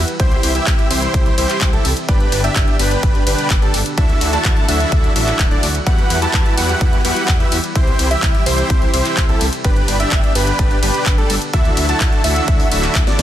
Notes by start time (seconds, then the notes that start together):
Already playing: E3 G3 B3 F#5
0.08 closed hi-hat
0.19 C2 C3 E4 G4 C5, kick, closed hi-hat, ride
0.32 closed hi-hat
0.43 C2, open hi-hat, ride
0.55 E4 G4 E5, closed hi-hat
0.67 C2, kick, clap, closed hi-hat, ride
0.79 closed hi-hat
0.90 C2 E4 G4 C5, open hi-hat, ride
1.02 closed hi-hat
1.14 C2, kick, closed hi-hat, ride
1.26 closed hi-hat
1.38 C2 E4 G4 C5, open hi-hat, ride
1.49 clap, closed hi-hat
1.61 C2, kick, clap, closed hi-hat, ride
1.73 E4 G4 A4, closed hi-hat
1.85 C2, open hi-hat, ride
1.97 closed hi-hat
2.08 G1 B2 D3 D4 G4 B4, kick, closed hi-hat, ride
2.20 closed hi-hat
2.32 G1, open hi-hat, ride
2.44 D4 G4 E5, closed hi-hat
2.56 G1, kick, clap, closed hi-hat, ride
2.68 closed hi-hat
2.79 G1 D4 G4 B4, open hi-hat, ride
2.91 closed hi-hat
3.03 G1, kick, closed hi-hat, ride
3.15 closed hi-hat
3.27 G1 D4 G4 B4, open hi-hat, ride
3.39 closed hi-hat
3.50 G1, kick, clap, closed hi-hat, ride
3.62 D4 G4 A4, closed hi-hat
3.74 G1, open hi-hat, ride
3.86 closed hi-hat
3.98 D2 F#3 A3 D4 E4 F#4 A4 E5 F#5, kick, closed hi-hat, ride
4.09 closed hi-hat
4.21 D2, open hi-hat, ride
4.33 D4 E4 F#4 A4 A5, closed hi-hat
4.45 D2, kick, clap, closed hi-hat, ride
4.57 closed hi-hat
4.68 D2 D4 E4 F#4 A4 E5, open hi-hat, ride
4.80 closed hi-hat
4.92 D2, kick, closed hi-hat, ride
5.04 closed hi-hat
5.16 A1 D4 E4 F#4 A4 E5, open hi-hat, ride
5.27 clap, closed hi-hat
5.39 D1, kick, clap, closed hi-hat, ride
5.51 D4 E4 F#4 A4 D5, closed hi-hat
5.63 D2, open hi-hat, ride
5.75 closed hi-hat
5.86 E2 E3 G3 B3 E4 F#4 G4 B4 F#5, kick, closed hi-hat, ride
5.98 closed hi-hat
6.10 E2, open hi-hat, ride
6.22 E4 F#4 G4 B4 A5, closed hi-hat
6.34 E2, kick, clap, closed hi-hat, ride
6.46 closed hi-hat
6.57 E2 E4 F#4 G4 B4 F#5, open hi-hat, ride
6.69 closed hi-hat
6.81 E2, kick, closed hi-hat, ride
6.93 closed hi-hat
7.05 E2 E4 F#4 G4 B4 F#5, open hi-hat, ride
7.16 closed hi-hat
7.28 E2, kick, clap, closed hi-hat, ride
7.40 E4 F#4 G4 B4 E5, closed hi-hat
7.52 E2, open hi-hat, ride
7.64 closed hi-hat
7.75 C2 C3 E4 G4 C5, kick, closed hi-hat, ride
7.87 closed hi-hat
7.99 C2, open hi-hat, ride
8.11 E4 G4 E5, closed hi-hat
8.23 C2, kick, clap, closed hi-hat, ride
8.35 closed hi-hat
8.46 C2 E4 G4 C5, open hi-hat, ride
8.58 closed hi-hat
8.70 C2, kick, closed hi-hat, ride
8.82 closed hi-hat
8.93 C2 E4 G4 C5, open hi-hat, ride
9.05 clap, closed hi-hat
9.17 C2, kick, clap, closed hi-hat, ride
9.29 E4 G4 A4, closed hi-hat
9.41 C2, open hi-hat, ride
9.53 closed hi-hat
9.64 G1 B2 D3 D4 G4 B4, kick, closed hi-hat, ride
9.76 closed hi-hat
9.88 G1, open hi-hat, ride
10.00 D4 G4 E5, closed hi-hat
10.12 G1, kick, clap, closed hi-hat, ride
10.24 closed hi-hat
10.35 G1 D4 G4 B4, open hi-hat, ride
10.47 closed hi-hat
10.59 G1, kick, closed hi-hat, ride
10.71 closed hi-hat
10.83 G1 D4 G4 B4, open hi-hat, ride
10.94 closed hi-hat
11.06 G1, kick, clap, closed hi-hat, ride
11.18 D4 G4 A4, closed hi-hat
11.30 G1, open hi-hat, ride
11.42 closed hi-hat
11.53 D2 F#3 A3 D4 E4 F#4 A4 E5, kick, closed hi-hat, ride
11.65 closed hi-hat
11.77 D2, open hi-hat, ride
11.89 D4 E4 F#4 A4 A5, closed hi-hat
12.00 D2, kick, clap, closed hi-hat, ride
12.12 closed hi-hat
12.24 D2 D4 E4 F#4 A4 E5, open hi-hat, ride
12.36 closed hi-hat
12.48 D2, kick, closed hi-hat, ride
12.60 open hi-hat
12.71 D1 D4 E4 F#4 A4 E5, open hi-hat, ride
12.83 clap, closed hi-hat
12.95 D2, kick, clap, closed hi-hat, ride
13.07 D4 E4 F#4 A4 D5, snare, closed hi-hat
13.19 D2, snare, open hi-hat, ride